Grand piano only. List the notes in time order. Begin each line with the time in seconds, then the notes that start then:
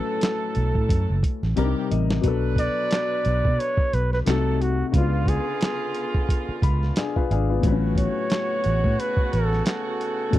Already playing: A2 F#3 C#4 B4
1.56 C3 G3 D4 A#4 A#5
1.65 D#4
1.91 D#5
2.21 B2 F#3
2.25 D4 A4
4.26 C3 A3 D#4 F#4
4.92 C#3 B3
4.96 D4 F4
6.63 B5
6.97 D4 G#4 G#5
7.16 F4 B4 F5
7.31 D4 G#4 F5
7.50 B3 F4
7.61 A2 F#3
7.65 C4 B4
7.72 C#4
10.31 A2 F#3
10.35 C#4